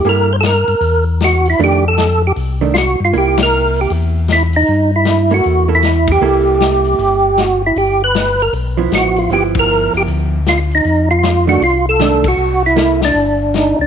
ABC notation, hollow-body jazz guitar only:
X:1
M:4/4
L:1/8
Q:"Swing" 1/4=156
K:Cmix
V:1 name="Hollow-body jazz guitar"
[B,EA] z6 z | [_E,A,D] z4 [E,A,D] z2 | [B,E]4- [B,E] z3 | z3 [B,EA]2 [B,EA] z2 |
[B,EA]4- [B,EA] z3 | z4 z [F,=B,E]3 | [F,=B,E]4- [F,B,E] z3 | z3 [_E,A,D] z2 [E,A,D] z |
z2 [B,EA] z4 z |]